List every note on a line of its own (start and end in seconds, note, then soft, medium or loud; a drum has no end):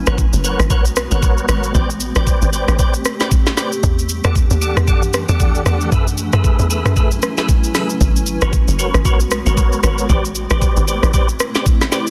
0.00 1.73 G#3 medium
0.00 1.73 B3 medium
0.00 1.73 F#4 medium
0.07 0.31 G#1 loud
0.07 0.18 A#4 medium
0.07 0.18 B4 medium
0.07 0.18 C#5 medium
0.07 0.18 F#5 medium
0.07 cross-stick loud
0.07 shaker medium
0.18 kick loud
0.18 shaker medium
0.33 0.57 F#1 medium
0.33 shaker medium
0.44 0.59 A#4 medium
0.44 0.59 B4 medium
0.44 0.59 C#5 medium
0.44 0.59 F#5 medium
0.44 shaker loud
0.59 0.72 G#1 medium
0.59 cross-stick loud
0.59 shaker medium
0.70 1.08 B1 medium
0.70 0.85 A#4 medium
0.70 0.85 B4 medium
0.70 0.85 C#5 medium
0.70 0.85 F#5 loud
0.70 kick loud
0.70 shaker medium
0.85 shaker medium
0.96 cross-stick loud
0.96 shaker loud
1.11 1.45 G#1 medium
1.11 1.46 A#4 medium
1.11 1.46 B4 medium
1.11 1.46 C#5 medium
1.11 1.46 F#5 medium
1.11 shaker medium
1.23 kick loud
1.23 shaker medium
1.38 shaker medium
1.48 1.72 G#1 medium
1.48 1.73 A#4 medium
1.48 1.73 B4 medium
1.48 1.73 C#5 medium
1.48 1.73 F#5 medium
1.48 cross-stick loud
1.48 shaker medium
1.63 shaker medium
1.74 2.12 A1 loud
1.74 3.81 A3 medium
1.74 3.81 C4 medium
1.74 5.88 G4 medium
1.74 1.89 B4 loud
1.74 1.90 C5 medium
1.74 1.90 D5 medium
1.74 1.90 G5 loud
1.74 kick loud
1.74 shaker medium
1.90 shaker medium
2.00 shaker medium
2.15 2.39 A1 loud
2.15 2.50 B4 medium
2.15 2.50 C5 medium
2.15 2.50 D5 medium
2.15 2.50 G5 medium
2.15 cross-stick loud
2.15 shaker medium
2.27 kick loud
2.27 shaker medium
2.42 2.66 G#1 loud
2.42 shaker medium
2.53 2.77 B4 medium
2.53 2.77 C5 medium
2.53 2.77 D5 medium
2.53 2.77 G5 medium
2.53 shaker loud
2.68 3.02 A1 medium
2.68 cross-stick loud
2.68 shaker medium
2.79 2.94 B4 medium
2.79 2.94 C5 medium
2.79 2.94 D5 medium
2.79 2.94 G5 loud
2.79 kick loud
2.79 shaker medium
2.94 shaker medium
3.05 cross-stick medium
3.05 shaker loud
3.20 3.31 B4 medium
3.20 3.31 C5 medium
3.20 3.31 D5 medium
3.20 3.31 G5 medium
3.20 snare medium
3.20 shaker medium
3.31 kick loud
3.31 shaker medium
3.46 snare medium
3.46 shaker medium
3.57 3.72 B4 medium
3.57 3.72 C5 medium
3.57 3.72 D5 medium
3.57 3.72 G5 medium
3.57 snare medium
3.57 shaker medium
3.72 shaker medium
3.83 4.21 E2 loud
3.83 5.90 E3 medium
3.83 7.97 A3 medium
3.83 5.90 D4 medium
3.83 5.90 F#5 medium
3.83 kick loud
3.83 shaker medium
3.99 shaker medium
4.09 shaker medium
4.24 4.48 E2 loud
4.24 4.35 G4 medium
4.24 4.35 A4 medium
4.24 4.35 D5 medium
4.24 4.36 F#5 medium
4.24 cross-stick medium
4.24 shaker medium
4.35 kick loud
4.35 shaker medium
4.50 4.74 D#2 medium
4.50 shaker medium
4.61 4.76 G4 medium
4.61 4.77 A4 medium
4.61 4.77 D5 medium
4.61 4.77 F#5 medium
4.61 shaker loud
4.77 4.89 E2 medium
4.77 cross-stick loud
4.77 shaker medium
4.87 5.25 F#2 loud
4.87 5.03 G4 medium
4.87 5.03 A4 medium
4.87 5.03 D5 medium
4.87 5.03 F#5 loud
4.87 kick loud
4.87 shaker medium
5.02 shaker medium
5.13 cross-stick loud
5.13 shaker loud
5.29 5.62 E2 loud
5.29 5.63 G4 medium
5.29 5.63 A4 medium
5.29 5.63 D5 medium
5.29 5.64 F#5 medium
5.29 shaker medium
5.40 kick loud
5.40 shaker medium
5.55 shaker soft
5.66 5.90 E2 medium
5.66 5.90 G4 medium
5.66 5.90 A4 medium
5.66 5.90 D5 medium
5.66 5.91 F#5 medium
5.66 cross-stick medium
5.66 shaker medium
5.81 shaker medium
5.92 6.29 F#2 loud
5.92 7.99 F#3 medium
5.92 7.99 C#4 medium
5.92 7.99 E4 medium
5.92 6.07 G#4 loud
5.92 6.07 A4 medium
5.92 7.99 B4 medium
5.92 6.07 B4 medium
5.92 6.07 E5 loud
5.92 7.99 G#5 medium
5.92 kick loud
5.92 shaker medium
6.08 shaker medium
6.18 shaker medium
6.33 6.57 F#2 loud
6.33 6.68 G#4 medium
6.33 6.68 A4 medium
6.33 6.68 B4 medium
6.33 6.68 E5 medium
6.33 cross-stick medium
6.33 shaker medium
6.44 kick loud
6.44 shaker medium
6.59 6.83 E2 loud
6.59 shaker medium
6.70 6.95 G#4 medium
6.70 6.95 A4 medium
6.70 6.95 B4 medium
6.70 6.95 E5 medium
6.70 shaker loud
6.85 7.19 F#2 medium
6.85 cross-stick loud
6.85 shaker medium
6.96 7.11 G#4 medium
6.96 7.11 A4 medium
6.96 7.11 B4 medium
6.96 7.12 E5 loud
6.96 kick loud
6.96 shaker medium
7.11 shaker medium
7.22 cross-stick loud
7.22 shaker loud
7.37 7.48 G#4 medium
7.37 7.48 A4 medium
7.37 7.49 B4 medium
7.37 7.49 E5 medium
7.37 snare medium
7.37 shaker medium
7.49 kick loud
7.49 shaker medium
7.64 shaker medium
7.74 7.90 G#4 medium
7.74 7.90 A4 medium
7.74 7.90 B4 medium
7.74 7.90 E5 medium
7.74 snare medium
7.74 open hi-hat medium
7.74 shaker loud
7.90 shaker medium
8.01 8.38 G#1 loud
8.01 10.07 G#3 medium
8.01 10.07 B3 medium
8.01 10.07 F#4 medium
8.01 kick loud
8.01 shaker medium
8.16 shaker medium
8.26 shaker medium
8.41 8.66 G#1 loud
8.41 8.53 F#4 medium
8.41 8.53 A#4 medium
8.41 8.53 B4 medium
8.41 8.53 C#5 medium
8.41 cross-stick loud
8.41 shaker medium
8.53 kick loud
8.53 shaker medium
8.68 8.92 F#1 loud
8.68 shaker medium
8.79 8.94 F#4 medium
8.79 8.94 A#4 medium
8.79 8.94 B4 medium
8.79 8.94 C#5 medium
8.79 shaker loud
8.94 9.07 G#1 medium
8.94 cross-stick loud
8.94 shaker medium
9.05 9.42 B1 medium
9.05 9.20 F#4 medium
9.05 9.20 A#4 medium
9.05 9.20 B4 medium
9.05 9.20 C#5 loud
9.05 kick loud
9.05 shaker medium
9.20 shaker medium
9.31 cross-stick loud
9.31 shaker loud
9.46 9.80 G#1 medium
9.46 9.81 F#4 medium
9.46 9.81 A#4 medium
9.46 9.81 B4 medium
9.46 9.81 C#5 medium
9.46 shaker medium
9.57 kick loud
9.57 shaker medium
9.72 shaker soft
9.83 10.07 G#1 medium
9.83 10.08 F#4 medium
9.83 10.08 A#4 medium
9.83 10.08 B4 medium
9.83 10.08 C#5 medium
9.83 cross-stick medium
9.83 shaker loud
9.98 shaker medium
10.09 10.47 A1 loud
10.09 12.10 A3 medium
10.09 12.10 C4 medium
10.09 12.10 E4 medium
10.09 10.24 G4 loud
10.09 10.24 B4 medium
10.09 10.24 C5 medium
10.09 10.25 D5 loud
10.09 kick loud
10.09 shaker medium
10.25 shaker medium
10.35 shaker medium
10.50 10.74 A1 loud
10.50 10.85 G4 medium
10.50 10.85 B4 medium
10.50 10.85 C5 medium
10.50 10.85 D5 medium
10.50 cross-stick loud
10.50 shaker medium
10.62 kick loud
10.62 shaker medium
10.77 11.00 G#1 medium
10.77 shaker medium
10.87 11.12 G4 medium
10.87 11.12 B4 medium
10.87 11.12 C5 medium
10.87 11.12 D5 medium
10.87 shaker loud
11.03 11.36 A1 medium
11.03 cross-stick medium
11.03 shaker medium
11.14 11.29 G4 loud
11.14 11.29 B4 medium
11.14 11.29 C5 medium
11.14 11.29 D5 loud
11.14 kick loud
11.14 shaker medium
11.29 shaker medium
11.40 cross-stick loud
11.40 shaker medium
11.55 11.66 G4 medium
11.55 11.66 B4 medium
11.55 11.66 C5 medium
11.55 11.66 D5 medium
11.55 snare medium
11.55 shaker medium
11.66 kick loud
11.66 shaker medium
11.81 snare medium
11.81 shaker soft
11.92 12.07 G4 medium
11.92 12.07 B4 medium
11.92 12.07 C5 medium
11.92 12.07 D5 medium
11.92 snare medium
11.92 shaker medium
12.07 shaker medium